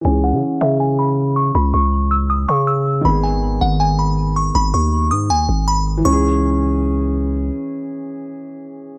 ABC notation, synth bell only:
X:1
M:4/4
L:1/8
Q:1/4=160
K:C#m
V:1 name="Synth bell"
g f2 e g b2 c' | b c'2 e' d' c' e'2 | b g2 f g b2 c' | b c'2 d' g2 b z |
c'6 z2 | z8 |]